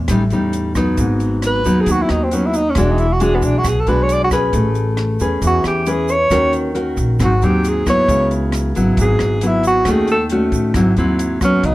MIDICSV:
0, 0, Header, 1, 5, 480
1, 0, Start_track
1, 0, Tempo, 443787
1, 1061, Time_signature, 4, 2, 24, 8
1, 12707, End_track
2, 0, Start_track
2, 0, Title_t, "Alto saxophone"
2, 0, Program_c, 0, 65
2, 1585, Note_on_c, 0, 71, 76
2, 1958, Note_on_c, 0, 68, 75
2, 1974, Note_off_c, 0, 71, 0
2, 2071, Note_on_c, 0, 66, 75
2, 2087, Note_off_c, 0, 68, 0
2, 2184, Note_on_c, 0, 64, 63
2, 2201, Note_off_c, 0, 66, 0
2, 2278, Note_on_c, 0, 63, 70
2, 2294, Note_off_c, 0, 64, 0
2, 2417, Note_on_c, 0, 60, 67
2, 2433, Note_off_c, 0, 63, 0
2, 2540, Note_on_c, 0, 61, 78
2, 2556, Note_off_c, 0, 60, 0
2, 2661, Note_on_c, 0, 64, 71
2, 2678, Note_off_c, 0, 61, 0
2, 2769, Note_on_c, 0, 63, 90
2, 2786, Note_off_c, 0, 64, 0
2, 2920, Note_on_c, 0, 61, 74
2, 2936, Note_off_c, 0, 63, 0
2, 3034, Note_on_c, 0, 62, 74
2, 3050, Note_off_c, 0, 61, 0
2, 3152, Note_on_c, 0, 63, 60
2, 3169, Note_off_c, 0, 62, 0
2, 3240, Note_on_c, 0, 64, 79
2, 3257, Note_off_c, 0, 63, 0
2, 3385, Note_on_c, 0, 66, 64
2, 3401, Note_off_c, 0, 64, 0
2, 3493, Note_on_c, 0, 68, 87
2, 3509, Note_off_c, 0, 66, 0
2, 3623, Note_on_c, 0, 59, 50
2, 3640, Note_off_c, 0, 68, 0
2, 3724, Note_on_c, 0, 62, 79
2, 3740, Note_off_c, 0, 59, 0
2, 3876, Note_on_c, 0, 66, 75
2, 3892, Note_off_c, 0, 62, 0
2, 3987, Note_on_c, 0, 68, 70
2, 4004, Note_off_c, 0, 66, 0
2, 4110, Note_on_c, 0, 69, 76
2, 4126, Note_off_c, 0, 68, 0
2, 4202, Note_on_c, 0, 71, 72
2, 4219, Note_off_c, 0, 69, 0
2, 4359, Note_on_c, 0, 73, 76
2, 4375, Note_off_c, 0, 71, 0
2, 4470, Note_on_c, 0, 74, 92
2, 4487, Note_off_c, 0, 73, 0
2, 4566, Note_off_c, 0, 74, 0
2, 4586, Note_on_c, 0, 66, 66
2, 4645, Note_off_c, 0, 66, 0
2, 5915, Note_on_c, 0, 66, 71
2, 6113, Note_off_c, 0, 66, 0
2, 6140, Note_on_c, 0, 67, 70
2, 6395, Note_on_c, 0, 68, 78
2, 6411, Note_off_c, 0, 67, 0
2, 6612, Note_on_c, 0, 73, 106
2, 6628, Note_off_c, 0, 68, 0
2, 7077, Note_off_c, 0, 73, 0
2, 7837, Note_on_c, 0, 66, 68
2, 8058, Note_on_c, 0, 67, 75
2, 8075, Note_off_c, 0, 66, 0
2, 8315, Note_on_c, 0, 68, 72
2, 8331, Note_off_c, 0, 67, 0
2, 8529, Note_off_c, 0, 68, 0
2, 8542, Note_on_c, 0, 73, 86
2, 8970, Note_off_c, 0, 73, 0
2, 9753, Note_on_c, 0, 68, 77
2, 10241, Note_on_c, 0, 64, 76
2, 10257, Note_off_c, 0, 68, 0
2, 10452, Note_off_c, 0, 64, 0
2, 10463, Note_on_c, 0, 66, 85
2, 10720, Note_on_c, 0, 68, 75
2, 10736, Note_off_c, 0, 66, 0
2, 10932, Note_off_c, 0, 68, 0
2, 10942, Note_on_c, 0, 69, 77
2, 11075, Note_off_c, 0, 69, 0
2, 12375, Note_on_c, 0, 61, 77
2, 12607, Note_on_c, 0, 63, 78
2, 12624, Note_off_c, 0, 61, 0
2, 12707, Note_off_c, 0, 63, 0
2, 12707, End_track
3, 0, Start_track
3, 0, Title_t, "Nylon-string guitar"
3, 0, Program_c, 1, 24
3, 103, Note_on_c, 1, 55, 51
3, 108, Note_on_c, 1, 45, 46
3, 113, Note_on_c, 1, 61, 47
3, 115, Note_on_c, 1, 63, 51
3, 243, Note_off_c, 1, 55, 0
3, 247, Note_off_c, 1, 61, 0
3, 249, Note_off_c, 1, 63, 0
3, 350, Note_on_c, 1, 55, 50
3, 357, Note_on_c, 1, 61, 55
3, 359, Note_on_c, 1, 63, 65
3, 788, Note_off_c, 1, 55, 0
3, 789, Note_off_c, 1, 61, 0
3, 792, Note_off_c, 1, 63, 0
3, 821, Note_on_c, 1, 54, 59
3, 829, Note_on_c, 1, 59, 60
3, 832, Note_on_c, 1, 63, 65
3, 1040, Note_off_c, 1, 45, 0
3, 1075, Note_on_c, 1, 44, 55
3, 1743, Note_off_c, 1, 54, 0
3, 1745, Note_off_c, 1, 59, 0
3, 1748, Note_off_c, 1, 63, 0
3, 1791, Note_on_c, 1, 54, 55
3, 1794, Note_on_c, 1, 59, 55
3, 1797, Note_on_c, 1, 63, 71
3, 2004, Note_off_c, 1, 44, 0
3, 2030, Note_on_c, 1, 51, 49
3, 2468, Note_off_c, 1, 54, 0
3, 2468, Note_off_c, 1, 59, 0
3, 2470, Note_off_c, 1, 63, 0
3, 2510, Note_on_c, 1, 54, 44
3, 2520, Note_on_c, 1, 59, 46
3, 2522, Note_on_c, 1, 63, 43
3, 2815, Note_off_c, 1, 54, 0
3, 2817, Note_off_c, 1, 59, 0
3, 2820, Note_off_c, 1, 63, 0
3, 2962, Note_off_c, 1, 51, 0
3, 2994, Note_on_c, 1, 52, 55
3, 2998, Note_on_c, 1, 56, 56
3, 3000, Note_on_c, 1, 62, 62
3, 3008, Note_on_c, 1, 66, 65
3, 3298, Note_off_c, 1, 56, 0
3, 3300, Note_off_c, 1, 62, 0
3, 3302, Note_off_c, 1, 66, 0
3, 3466, Note_on_c, 1, 56, 55
3, 3473, Note_on_c, 1, 62, 55
3, 3477, Note_on_c, 1, 66, 62
3, 3924, Note_off_c, 1, 52, 0
3, 3941, Note_off_c, 1, 56, 0
3, 3943, Note_off_c, 1, 62, 0
3, 3946, Note_off_c, 1, 66, 0
3, 3952, Note_on_c, 1, 47, 47
3, 4192, Note_on_c, 1, 56, 51
3, 4201, Note_on_c, 1, 62, 54
3, 4201, Note_on_c, 1, 66, 62
3, 4629, Note_off_c, 1, 56, 0
3, 4630, Note_off_c, 1, 62, 0
3, 4633, Note_off_c, 1, 66, 0
3, 4674, Note_on_c, 1, 61, 57
3, 4678, Note_on_c, 1, 68, 62
3, 4681, Note_on_c, 1, 71, 72
3, 4882, Note_off_c, 1, 47, 0
3, 4914, Note_on_c, 1, 57, 57
3, 5590, Note_off_c, 1, 61, 0
3, 5591, Note_off_c, 1, 68, 0
3, 5593, Note_off_c, 1, 71, 0
3, 5633, Note_on_c, 1, 61, 61
3, 5640, Note_on_c, 1, 68, 60
3, 5641, Note_on_c, 1, 71, 65
3, 5844, Note_off_c, 1, 57, 0
3, 5878, Note_on_c, 1, 52, 54
3, 6310, Note_off_c, 1, 61, 0
3, 6312, Note_off_c, 1, 68, 0
3, 6313, Note_off_c, 1, 71, 0
3, 6348, Note_on_c, 1, 61, 50
3, 6349, Note_on_c, 1, 68, 45
3, 6354, Note_on_c, 1, 71, 54
3, 6654, Note_off_c, 1, 61, 0
3, 6654, Note_off_c, 1, 68, 0
3, 6657, Note_off_c, 1, 71, 0
3, 6806, Note_off_c, 1, 52, 0
3, 6825, Note_on_c, 1, 61, 65
3, 6827, Note_on_c, 1, 51, 54
3, 6830, Note_on_c, 1, 66, 51
3, 6836, Note_on_c, 1, 70, 65
3, 7265, Note_off_c, 1, 61, 0
3, 7268, Note_off_c, 1, 66, 0
3, 7271, Note_off_c, 1, 70, 0
3, 7296, Note_on_c, 1, 61, 53
3, 7301, Note_on_c, 1, 66, 56
3, 7309, Note_on_c, 1, 70, 66
3, 7760, Note_off_c, 1, 61, 0
3, 7761, Note_off_c, 1, 51, 0
3, 7763, Note_off_c, 1, 66, 0
3, 7765, Note_off_c, 1, 70, 0
3, 7785, Note_on_c, 1, 54, 48
3, 7789, Note_on_c, 1, 44, 53
3, 7792, Note_on_c, 1, 60, 51
3, 7793, Note_on_c, 1, 63, 49
3, 7925, Note_off_c, 1, 54, 0
3, 7928, Note_off_c, 1, 60, 0
3, 7928, Note_off_c, 1, 63, 0
3, 8036, Note_on_c, 1, 54, 62
3, 8042, Note_on_c, 1, 63, 64
3, 8044, Note_on_c, 1, 60, 63
3, 8472, Note_off_c, 1, 54, 0
3, 8473, Note_off_c, 1, 60, 0
3, 8474, Note_off_c, 1, 63, 0
3, 8510, Note_on_c, 1, 54, 57
3, 8513, Note_on_c, 1, 59, 65
3, 8516, Note_on_c, 1, 64, 65
3, 8723, Note_off_c, 1, 44, 0
3, 8749, Note_on_c, 1, 49, 58
3, 9428, Note_off_c, 1, 59, 0
3, 9429, Note_off_c, 1, 54, 0
3, 9431, Note_off_c, 1, 64, 0
3, 9475, Note_on_c, 1, 54, 60
3, 9481, Note_on_c, 1, 59, 52
3, 9482, Note_on_c, 1, 64, 60
3, 9682, Note_off_c, 1, 49, 0
3, 9716, Note_on_c, 1, 44, 52
3, 10152, Note_off_c, 1, 54, 0
3, 10152, Note_off_c, 1, 59, 0
3, 10155, Note_off_c, 1, 64, 0
3, 10194, Note_on_c, 1, 54, 50
3, 10200, Note_on_c, 1, 59, 49
3, 10207, Note_on_c, 1, 64, 50
3, 10631, Note_off_c, 1, 54, 0
3, 10634, Note_off_c, 1, 59, 0
3, 10637, Note_off_c, 1, 64, 0
3, 10646, Note_off_c, 1, 44, 0
3, 10678, Note_on_c, 1, 51, 58
3, 10678, Note_on_c, 1, 57, 62
3, 10682, Note_on_c, 1, 61, 60
3, 10684, Note_on_c, 1, 66, 73
3, 10980, Note_off_c, 1, 57, 0
3, 10982, Note_off_c, 1, 61, 0
3, 10982, Note_off_c, 1, 66, 0
3, 11156, Note_on_c, 1, 57, 52
3, 11161, Note_on_c, 1, 61, 60
3, 11163, Note_on_c, 1, 66, 60
3, 11608, Note_off_c, 1, 51, 0
3, 11611, Note_off_c, 1, 57, 0
3, 11613, Note_off_c, 1, 61, 0
3, 11615, Note_off_c, 1, 66, 0
3, 11632, Note_on_c, 1, 54, 52
3, 11635, Note_on_c, 1, 44, 48
3, 11641, Note_on_c, 1, 60, 56
3, 11642, Note_on_c, 1, 64, 61
3, 11830, Note_off_c, 1, 54, 0
3, 11833, Note_off_c, 1, 60, 0
3, 11835, Note_off_c, 1, 64, 0
3, 11873, Note_on_c, 1, 54, 62
3, 11878, Note_on_c, 1, 60, 57
3, 11883, Note_on_c, 1, 64, 59
3, 12311, Note_off_c, 1, 54, 0
3, 12312, Note_off_c, 1, 60, 0
3, 12316, Note_off_c, 1, 64, 0
3, 12351, Note_on_c, 1, 54, 57
3, 12357, Note_on_c, 1, 59, 63
3, 12567, Note_off_c, 1, 44, 0
3, 12596, Note_on_c, 1, 49, 56
3, 12707, Note_off_c, 1, 49, 0
3, 12707, Note_off_c, 1, 54, 0
3, 12707, Note_off_c, 1, 59, 0
3, 12707, End_track
4, 0, Start_track
4, 0, Title_t, "Upright bass"
4, 0, Program_c, 2, 32
4, 95, Note_on_c, 2, 33, 86
4, 321, Note_off_c, 2, 33, 0
4, 340, Note_on_c, 2, 40, 78
4, 1017, Note_off_c, 2, 40, 0
4, 1060, Note_on_c, 2, 32, 86
4, 1737, Note_off_c, 2, 32, 0
4, 1790, Note_on_c, 2, 39, 78
4, 2009, Note_off_c, 2, 39, 0
4, 2023, Note_on_c, 2, 39, 93
4, 2245, Note_off_c, 2, 39, 0
4, 2269, Note_on_c, 2, 39, 83
4, 2942, Note_off_c, 2, 39, 0
4, 2983, Note_on_c, 2, 28, 97
4, 3659, Note_off_c, 2, 28, 0
4, 3705, Note_on_c, 2, 35, 80
4, 3926, Note_off_c, 2, 35, 0
4, 3948, Note_on_c, 2, 35, 90
4, 4168, Note_off_c, 2, 35, 0
4, 4186, Note_on_c, 2, 35, 82
4, 4860, Note_off_c, 2, 35, 0
4, 4905, Note_on_c, 2, 33, 92
4, 5580, Note_off_c, 2, 33, 0
4, 5629, Note_on_c, 2, 40, 71
4, 5849, Note_off_c, 2, 40, 0
4, 5865, Note_on_c, 2, 40, 87
4, 6087, Note_off_c, 2, 40, 0
4, 6103, Note_on_c, 2, 40, 73
4, 6780, Note_off_c, 2, 40, 0
4, 6825, Note_on_c, 2, 39, 79
4, 7500, Note_off_c, 2, 39, 0
4, 7544, Note_on_c, 2, 34, 78
4, 7767, Note_off_c, 2, 34, 0
4, 7788, Note_on_c, 2, 32, 87
4, 8009, Note_off_c, 2, 32, 0
4, 8030, Note_on_c, 2, 39, 81
4, 8703, Note_off_c, 2, 39, 0
4, 8743, Note_on_c, 2, 37, 90
4, 9420, Note_off_c, 2, 37, 0
4, 9474, Note_on_c, 2, 32, 77
4, 9692, Note_off_c, 2, 32, 0
4, 9704, Note_on_c, 2, 32, 89
4, 9927, Note_off_c, 2, 32, 0
4, 9956, Note_on_c, 2, 32, 78
4, 10627, Note_off_c, 2, 32, 0
4, 10665, Note_on_c, 2, 39, 95
4, 11342, Note_off_c, 2, 39, 0
4, 11381, Note_on_c, 2, 45, 80
4, 11606, Note_off_c, 2, 45, 0
4, 11620, Note_on_c, 2, 32, 85
4, 11845, Note_off_c, 2, 32, 0
4, 11868, Note_on_c, 2, 39, 83
4, 12543, Note_off_c, 2, 39, 0
4, 12587, Note_on_c, 2, 37, 84
4, 12707, Note_off_c, 2, 37, 0
4, 12707, End_track
5, 0, Start_track
5, 0, Title_t, "Drums"
5, 86, Note_on_c, 9, 37, 59
5, 86, Note_on_c, 9, 42, 42
5, 91, Note_on_c, 9, 36, 57
5, 94, Note_on_c, 9, 82, 62
5, 194, Note_off_c, 9, 37, 0
5, 194, Note_off_c, 9, 42, 0
5, 199, Note_off_c, 9, 36, 0
5, 202, Note_off_c, 9, 82, 0
5, 328, Note_on_c, 9, 42, 24
5, 334, Note_on_c, 9, 82, 26
5, 436, Note_off_c, 9, 42, 0
5, 442, Note_off_c, 9, 82, 0
5, 574, Note_on_c, 9, 42, 40
5, 576, Note_on_c, 9, 82, 49
5, 682, Note_off_c, 9, 42, 0
5, 684, Note_off_c, 9, 82, 0
5, 813, Note_on_c, 9, 82, 51
5, 814, Note_on_c, 9, 37, 54
5, 814, Note_on_c, 9, 42, 25
5, 816, Note_on_c, 9, 36, 50
5, 921, Note_off_c, 9, 82, 0
5, 923, Note_off_c, 9, 37, 0
5, 923, Note_off_c, 9, 42, 0
5, 925, Note_off_c, 9, 36, 0
5, 1054, Note_on_c, 9, 42, 40
5, 1057, Note_on_c, 9, 36, 57
5, 1057, Note_on_c, 9, 82, 61
5, 1162, Note_off_c, 9, 42, 0
5, 1165, Note_off_c, 9, 82, 0
5, 1166, Note_off_c, 9, 36, 0
5, 1299, Note_on_c, 9, 42, 23
5, 1300, Note_on_c, 9, 82, 22
5, 1407, Note_off_c, 9, 42, 0
5, 1408, Note_off_c, 9, 82, 0
5, 1539, Note_on_c, 9, 37, 50
5, 1539, Note_on_c, 9, 42, 38
5, 1545, Note_on_c, 9, 82, 54
5, 1647, Note_off_c, 9, 37, 0
5, 1647, Note_off_c, 9, 42, 0
5, 1654, Note_off_c, 9, 82, 0
5, 1777, Note_on_c, 9, 42, 23
5, 1791, Note_on_c, 9, 82, 65
5, 1885, Note_off_c, 9, 42, 0
5, 1899, Note_off_c, 9, 82, 0
5, 2015, Note_on_c, 9, 42, 42
5, 2020, Note_on_c, 9, 36, 56
5, 2032, Note_on_c, 9, 82, 62
5, 2123, Note_off_c, 9, 42, 0
5, 2128, Note_off_c, 9, 36, 0
5, 2140, Note_off_c, 9, 82, 0
5, 2259, Note_on_c, 9, 37, 52
5, 2259, Note_on_c, 9, 42, 27
5, 2275, Note_on_c, 9, 82, 27
5, 2367, Note_off_c, 9, 37, 0
5, 2367, Note_off_c, 9, 42, 0
5, 2383, Note_off_c, 9, 82, 0
5, 2502, Note_on_c, 9, 42, 42
5, 2517, Note_on_c, 9, 82, 52
5, 2610, Note_off_c, 9, 42, 0
5, 2625, Note_off_c, 9, 82, 0
5, 2742, Note_on_c, 9, 42, 25
5, 2746, Note_on_c, 9, 82, 60
5, 2850, Note_off_c, 9, 42, 0
5, 2854, Note_off_c, 9, 82, 0
5, 2976, Note_on_c, 9, 37, 61
5, 2976, Note_on_c, 9, 42, 44
5, 2981, Note_on_c, 9, 36, 56
5, 2994, Note_on_c, 9, 82, 57
5, 3084, Note_off_c, 9, 37, 0
5, 3084, Note_off_c, 9, 42, 0
5, 3089, Note_off_c, 9, 36, 0
5, 3103, Note_off_c, 9, 82, 0
5, 3223, Note_on_c, 9, 42, 27
5, 3235, Note_on_c, 9, 82, 20
5, 3331, Note_off_c, 9, 42, 0
5, 3343, Note_off_c, 9, 82, 0
5, 3462, Note_on_c, 9, 42, 40
5, 3468, Note_on_c, 9, 82, 58
5, 3570, Note_off_c, 9, 42, 0
5, 3577, Note_off_c, 9, 82, 0
5, 3702, Note_on_c, 9, 82, 63
5, 3703, Note_on_c, 9, 36, 48
5, 3703, Note_on_c, 9, 42, 25
5, 3810, Note_off_c, 9, 82, 0
5, 3811, Note_off_c, 9, 36, 0
5, 3811, Note_off_c, 9, 42, 0
5, 3941, Note_on_c, 9, 82, 65
5, 3942, Note_on_c, 9, 36, 60
5, 3942, Note_on_c, 9, 37, 55
5, 3942, Note_on_c, 9, 42, 42
5, 4049, Note_off_c, 9, 82, 0
5, 4050, Note_off_c, 9, 36, 0
5, 4051, Note_off_c, 9, 37, 0
5, 4051, Note_off_c, 9, 42, 0
5, 4183, Note_on_c, 9, 42, 24
5, 4185, Note_on_c, 9, 82, 24
5, 4291, Note_off_c, 9, 42, 0
5, 4293, Note_off_c, 9, 82, 0
5, 4424, Note_on_c, 9, 42, 41
5, 4427, Note_on_c, 9, 82, 49
5, 4532, Note_off_c, 9, 42, 0
5, 4535, Note_off_c, 9, 82, 0
5, 4661, Note_on_c, 9, 36, 47
5, 4662, Note_on_c, 9, 82, 58
5, 4664, Note_on_c, 9, 37, 55
5, 4664, Note_on_c, 9, 42, 25
5, 4770, Note_off_c, 9, 36, 0
5, 4770, Note_off_c, 9, 82, 0
5, 4772, Note_off_c, 9, 37, 0
5, 4772, Note_off_c, 9, 42, 0
5, 4899, Note_on_c, 9, 42, 39
5, 4901, Note_on_c, 9, 36, 59
5, 4908, Note_on_c, 9, 82, 53
5, 5007, Note_off_c, 9, 42, 0
5, 5009, Note_off_c, 9, 36, 0
5, 5016, Note_off_c, 9, 82, 0
5, 5137, Note_on_c, 9, 82, 23
5, 5140, Note_on_c, 9, 42, 23
5, 5245, Note_off_c, 9, 82, 0
5, 5248, Note_off_c, 9, 42, 0
5, 5377, Note_on_c, 9, 37, 56
5, 5377, Note_on_c, 9, 42, 37
5, 5486, Note_off_c, 9, 37, 0
5, 5486, Note_off_c, 9, 42, 0
5, 5621, Note_on_c, 9, 42, 24
5, 5622, Note_on_c, 9, 82, 60
5, 5729, Note_off_c, 9, 42, 0
5, 5731, Note_off_c, 9, 82, 0
5, 5861, Note_on_c, 9, 36, 58
5, 5862, Note_on_c, 9, 42, 43
5, 5864, Note_on_c, 9, 82, 64
5, 5969, Note_off_c, 9, 36, 0
5, 5971, Note_off_c, 9, 42, 0
5, 5972, Note_off_c, 9, 82, 0
5, 6101, Note_on_c, 9, 37, 59
5, 6101, Note_on_c, 9, 42, 24
5, 6101, Note_on_c, 9, 82, 26
5, 6209, Note_off_c, 9, 82, 0
5, 6210, Note_off_c, 9, 37, 0
5, 6210, Note_off_c, 9, 42, 0
5, 6340, Note_on_c, 9, 82, 47
5, 6343, Note_on_c, 9, 42, 37
5, 6448, Note_off_c, 9, 82, 0
5, 6451, Note_off_c, 9, 42, 0
5, 6579, Note_on_c, 9, 82, 58
5, 6588, Note_on_c, 9, 42, 24
5, 6687, Note_off_c, 9, 82, 0
5, 6696, Note_off_c, 9, 42, 0
5, 6819, Note_on_c, 9, 82, 59
5, 6821, Note_on_c, 9, 36, 60
5, 6828, Note_on_c, 9, 37, 59
5, 6828, Note_on_c, 9, 42, 45
5, 6927, Note_off_c, 9, 82, 0
5, 6929, Note_off_c, 9, 36, 0
5, 6936, Note_off_c, 9, 37, 0
5, 6936, Note_off_c, 9, 42, 0
5, 7061, Note_on_c, 9, 42, 27
5, 7067, Note_on_c, 9, 82, 23
5, 7169, Note_off_c, 9, 42, 0
5, 7176, Note_off_c, 9, 82, 0
5, 7305, Note_on_c, 9, 42, 42
5, 7413, Note_off_c, 9, 42, 0
5, 7541, Note_on_c, 9, 36, 50
5, 7541, Note_on_c, 9, 82, 57
5, 7545, Note_on_c, 9, 42, 26
5, 7649, Note_off_c, 9, 36, 0
5, 7649, Note_off_c, 9, 82, 0
5, 7653, Note_off_c, 9, 42, 0
5, 7782, Note_on_c, 9, 82, 59
5, 7783, Note_on_c, 9, 36, 60
5, 7788, Note_on_c, 9, 37, 58
5, 7788, Note_on_c, 9, 42, 43
5, 7890, Note_off_c, 9, 82, 0
5, 7891, Note_off_c, 9, 36, 0
5, 7896, Note_off_c, 9, 37, 0
5, 7896, Note_off_c, 9, 42, 0
5, 8023, Note_on_c, 9, 82, 26
5, 8028, Note_on_c, 9, 42, 27
5, 8131, Note_off_c, 9, 82, 0
5, 8136, Note_off_c, 9, 42, 0
5, 8267, Note_on_c, 9, 82, 50
5, 8270, Note_on_c, 9, 42, 43
5, 8375, Note_off_c, 9, 82, 0
5, 8378, Note_off_c, 9, 42, 0
5, 8504, Note_on_c, 9, 36, 48
5, 8507, Note_on_c, 9, 82, 59
5, 8509, Note_on_c, 9, 37, 55
5, 8509, Note_on_c, 9, 42, 26
5, 8612, Note_off_c, 9, 36, 0
5, 8615, Note_off_c, 9, 82, 0
5, 8618, Note_off_c, 9, 37, 0
5, 8618, Note_off_c, 9, 42, 0
5, 8744, Note_on_c, 9, 36, 60
5, 8748, Note_on_c, 9, 42, 38
5, 8754, Note_on_c, 9, 82, 61
5, 8852, Note_off_c, 9, 36, 0
5, 8856, Note_off_c, 9, 42, 0
5, 8862, Note_off_c, 9, 82, 0
5, 8987, Note_on_c, 9, 42, 24
5, 8999, Note_on_c, 9, 82, 23
5, 9095, Note_off_c, 9, 42, 0
5, 9107, Note_off_c, 9, 82, 0
5, 9219, Note_on_c, 9, 37, 51
5, 9219, Note_on_c, 9, 42, 39
5, 9244, Note_on_c, 9, 82, 56
5, 9327, Note_off_c, 9, 37, 0
5, 9327, Note_off_c, 9, 42, 0
5, 9352, Note_off_c, 9, 82, 0
5, 9465, Note_on_c, 9, 42, 24
5, 9480, Note_on_c, 9, 82, 60
5, 9573, Note_off_c, 9, 42, 0
5, 9588, Note_off_c, 9, 82, 0
5, 9703, Note_on_c, 9, 36, 56
5, 9704, Note_on_c, 9, 42, 42
5, 9723, Note_on_c, 9, 82, 64
5, 9812, Note_off_c, 9, 36, 0
5, 9812, Note_off_c, 9, 42, 0
5, 9831, Note_off_c, 9, 82, 0
5, 9941, Note_on_c, 9, 37, 56
5, 9941, Note_on_c, 9, 42, 23
5, 9955, Note_on_c, 9, 82, 28
5, 10049, Note_off_c, 9, 37, 0
5, 10049, Note_off_c, 9, 42, 0
5, 10063, Note_off_c, 9, 82, 0
5, 10181, Note_on_c, 9, 42, 43
5, 10196, Note_on_c, 9, 82, 47
5, 10289, Note_off_c, 9, 42, 0
5, 10304, Note_off_c, 9, 82, 0
5, 10420, Note_on_c, 9, 42, 26
5, 10428, Note_on_c, 9, 82, 58
5, 10528, Note_off_c, 9, 42, 0
5, 10536, Note_off_c, 9, 82, 0
5, 10655, Note_on_c, 9, 37, 62
5, 10655, Note_on_c, 9, 42, 43
5, 10660, Note_on_c, 9, 36, 62
5, 10671, Note_on_c, 9, 82, 59
5, 10763, Note_off_c, 9, 37, 0
5, 10763, Note_off_c, 9, 42, 0
5, 10768, Note_off_c, 9, 36, 0
5, 10779, Note_off_c, 9, 82, 0
5, 10896, Note_on_c, 9, 42, 28
5, 10911, Note_on_c, 9, 82, 23
5, 11005, Note_off_c, 9, 42, 0
5, 11019, Note_off_c, 9, 82, 0
5, 11135, Note_on_c, 9, 42, 44
5, 11243, Note_off_c, 9, 42, 0
5, 11377, Note_on_c, 9, 42, 26
5, 11379, Note_on_c, 9, 36, 50
5, 11394, Note_on_c, 9, 82, 62
5, 11486, Note_off_c, 9, 42, 0
5, 11487, Note_off_c, 9, 36, 0
5, 11502, Note_off_c, 9, 82, 0
5, 11618, Note_on_c, 9, 37, 63
5, 11618, Note_on_c, 9, 42, 48
5, 11620, Note_on_c, 9, 36, 60
5, 11632, Note_on_c, 9, 82, 58
5, 11726, Note_off_c, 9, 37, 0
5, 11726, Note_off_c, 9, 42, 0
5, 11728, Note_off_c, 9, 36, 0
5, 11741, Note_off_c, 9, 82, 0
5, 11860, Note_on_c, 9, 42, 27
5, 11871, Note_on_c, 9, 82, 27
5, 11968, Note_off_c, 9, 42, 0
5, 11980, Note_off_c, 9, 82, 0
5, 12105, Note_on_c, 9, 42, 47
5, 12108, Note_on_c, 9, 82, 50
5, 12213, Note_off_c, 9, 42, 0
5, 12216, Note_off_c, 9, 82, 0
5, 12342, Note_on_c, 9, 36, 51
5, 12342, Note_on_c, 9, 37, 57
5, 12342, Note_on_c, 9, 42, 23
5, 12347, Note_on_c, 9, 82, 64
5, 12450, Note_off_c, 9, 37, 0
5, 12450, Note_off_c, 9, 42, 0
5, 12451, Note_off_c, 9, 36, 0
5, 12455, Note_off_c, 9, 82, 0
5, 12584, Note_on_c, 9, 36, 54
5, 12584, Note_on_c, 9, 42, 41
5, 12692, Note_off_c, 9, 36, 0
5, 12692, Note_off_c, 9, 42, 0
5, 12707, End_track
0, 0, End_of_file